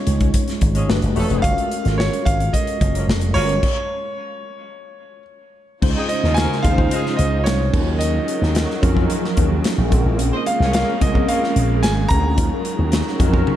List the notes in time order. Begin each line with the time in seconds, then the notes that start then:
Already playing: G#3 C#4 D#4 F4 C#5
0.07 C#2, closed hi-hat
0.20 kick, closed hi-hat
0.34 kick, closed hi-hat
0.48 snare, closed hi-hat
0.61 G#1, kick, closed hi-hat
0.75 F3 G#3 C#4 G#4, closed hi-hat
0.88 G1 A3 D4 F#4 G4 B4, snare
1.02 F#1, closed hi-hat
1.15 E1 F3 A3 C#4 D4 F#4 G4 A4 B4, open hi-hat
1.30 F1, closed hi-hat
1.42 F#1 G#3 C#4 F4 F#4 A#4 F5, kick, closed hi-hat
1.58 closed hi-hat
1.71 closed hi-hat
1.84 G#1 G#3 C#4 F4 F#4 A4, snare, closed hi-hat
1.91 A#4
1.98 C#5, snare
2.13 closed hi-hat
2.25 G#1 F5, kick, closed hi-hat
2.40 closed hi-hat
2.53 D#5, kick, closed hi-hat
2.67 closed hi-hat
2.81 F#1, kick, closed hi-hat
2.94 F3 A#3 C#4 A#4, closed hi-hat
3.08 F1, snare
3.21 closed hi-hat
3.34 G1 F3 G#3 A#3 C#4 F4 F#4 A#4 C#5, open hi-hat
3.49 closed hi-hat
3.63 kick, crash
5.81 C#2 C#3 G#3 C#4 D#4 F4 C5, kick, crash
5.96 C4 D#4 G#4 D#5
6.09 D#5, closed hi-hat
6.23 D#2 G#3 C#4 F4 C#5, snare
6.34 A#3 F#4 A#4 G#5, snare, closed hi-hat
6.52 snare
6.62 D#2 G#3 C#4 D#4 F4 C5 F5, kick, closed hi-hat
6.77 G#3 C#4 D#4 F4 C5, kick
6.91 F3 G#3 D#4 G#4, closed hi-hat
7.06 snare
7.17 C#2 D#5, closed hi-hat
7.38 D#5
7.44 C2 C#5, snare, closed hi-hat
7.72 D#2 C#3 D#3 F#3 C#4 D#4 F4 A#4, kick, crash
7.99 D#5, closed hi-hat
8.28 closed hi-hat
8.42 D#2, snare
8.55 snare, closed hi-hat
8.70 snare
8.81 F2 F#3 C#4 D#4 F4 A#4, kick, closed hi-hat
8.95 F3 C#4 D#4 F4 A#4, kick
9.02 F#3
9.10 closed hi-hat
9.24 snare
9.37 D#2, kick, closed hi-hat
9.64 snare, closed hi-hat
9.78 A#1
9.90 A#1 G#3 A#3 C4 C#4 F4 A4, kick, closed hi-hat
9.98 A#4
10.06 A1
10.19 A#1, closed hi-hat
10.33 D#4 C5 D#5
10.46 F5, closed hi-hat
10.60 C2 A#3 C#4 G#4 C#5, snare
10.73 F3 A#3 C#4 A#4 F5, snare, closed hi-hat
11.00 C2 G#3 C4 C#4 F4 A#4 D#5, kick, closed hi-hat
11.13 G#3 C4 C#4 F4 A#4, kick
11.28 F3 A#3 C#4 A#4 F5, closed hi-hat
11.43 snare
11.56 A#1, closed hi-hat
11.83 G#1 G#5, snare, closed hi-hat
12.09 D2 A#5, kick, closed hi-hat
12.37 D#2 D#3 F#3 C#4 D#4 F4 A#4, kick, closed hi-hat
12.65 closed hi-hat
12.79 D#2
12.92 snare, closed hi-hat
13.07 snare
13.19 F2 F#3 C#4 D#4 F4 A#4, kick, closed hi-hat
13.32 F#3 C#4 D#4 F4 A#4, kick
13.47 high tom